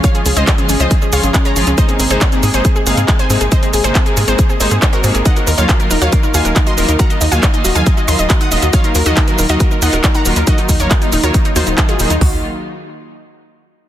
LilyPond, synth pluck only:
\new Staff \with { instrumentName = "Synth pluck" } { \time 4/4 \key ees \dorian \tempo 4 = 138 <des'' f''>16 aes'16 aes'16 <c'' ees''>16 aes'16 aes'16 aes'16 <c'' ees''>16 aes'16 aes'16 <des'' f''>16 aes'16 r16 <des'' bes''>16 aes'16 aes'16 | <c'' ees''>16 aes'16 aes'16 <aes' c''>16 r16 aes'16 aes'16 <aes' c''>16 aes'16 aes'16 <aes' f''>16 aes'16 aes'16 <c'' aes''>16 aes'16 aes'16 | <c'' ees''>16 aes'16 aes'16 <aes' c''>16 r16 aes'16 aes'16 <aes' c''>16 aes'16 aes'16 <aes' c''>16 aes'16 aes'16 <ges' bes'>16 aes'16 aes'16 | <ees'' ges''>16 bes'16 bes'16 <des'' f''>16 bes'16 bes'16 bes'16 <des'' f''>16 bes'16 bes'16 <f'' aes''>16 bes'16 bes'16 <ees'' c'''>16 bes'16 bes'16 |
<ges'' bes''>16 ees''16 ees''16 <f'' aes''>16 ees''16 ees''16 ees''16 <f'' aes''>16 ees''16 ees''16 <ees'' c'''>16 ees''16 ees''16 <ges'' ees'''>16 ees''16 ees''16 | <des'' f''>16 bes'16 bes'16 <ges' ees''>16 bes'16 bes'16 bes'16 <ges' ees''>16 bes'16 bes'16 <ees'' ges''>16 bes'16 r16 <ges'' bes''>16 bes'16 bes'16 | <ges' ees''>16 ees'16 ees'16 <bes' des''>16 ees'16 ees'16 ees'16 <bes' des''>16 ees'16 ees'16 <ees' c''>16 ees'16 r16 <f' aes'>16 ees'16 ees'16 | ges'8 r2. r8 | }